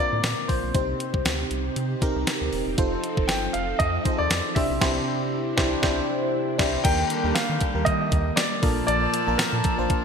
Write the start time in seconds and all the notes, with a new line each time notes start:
Already playing: A#2 D3 A#3 C4 D5
0.00 D4 F4 A#4
0.13 A2
0.24 A#2, snare, closed hi-hat, tambourine
0.48 A#1 C5, kick, open hi-hat
0.63 B1
0.74 C2 C3 C4 D#4 G4 C5, kick, closed hi-hat
1.00 closed hi-hat
1.14 C2, kick
1.25 D2, snare, closed hi-hat, tambourine
1.51 C2, closed hi-hat
1.76 C3, closed hi-hat
2.01 C4 D#4 G4 A#4, kick, closed hi-hat
2.16 C2
2.27 snare, closed hi-hat, tambourine
2.41 D2
2.53 D#1, open hi-hat
2.67 E1
2.78 F1 F3 D#4 F4 A4 C5, kick, closed hi-hat
3.04 closed hi-hat
3.17 F1, kick
3.28 G1 G5, snare, closed hi-hat, tambourine
3.53 F1 F5, closed hi-hat
3.79 F2 D#5, kick, closed hi-hat
4.05 D#4 F4 G#4 C5, kick, closed hi-hat
4.12 A4
4.18 D#2 D5
4.30 F2, snare, closed hi-hat, tambourine
4.55 C2 C3 D4 E4 G4 C5 E5, kick, open hi-hat
4.70 B1
4.81 C2 C3 D4 E4 G4 C5, kick, snare, crash
5.57 C2 D4 E4 G4 C5, kick, snare
5.82 C2 D4 E4 G4 C5, kick, snare
6.58 C2 D4 E4 G4 C5, kick, snare, crash
6.84 D#2 D3 D#3 G3 A#3 D4 G4 A#4 G5, kick, closed hi-hat, crash
7.10 closed hi-hat
7.23 D#2 A#3 D4 G4 A#4
7.35 D#3 F5, snare, closed hi-hat, tambourine
7.50 D#3
7.61 kick, closed hi-hat
7.74 D#2 D#3 A#3 G4 A#4
7.85 D#5, kick, closed hi-hat
8.12 D#2, kick, closed hi-hat
8.36 D5, snare, closed hi-hat, tambourine
8.62 A#1 A#2 F3 A#3 D4 F4 A4 A#4 A5, kick, open hi-hat
8.87 A#1 D5, closed hi-hat
9.14 closed hi-hat
9.27 A#1 A#3 D4 F4 A#4 A5
9.38 A#2 A#4, snare, closed hi-hat, tambourine
9.53 A#2
9.64 kick, closed hi-hat
9.78 A#1 A#3 D4 F4 C5 A5
9.90 A#2, kick, closed hi-hat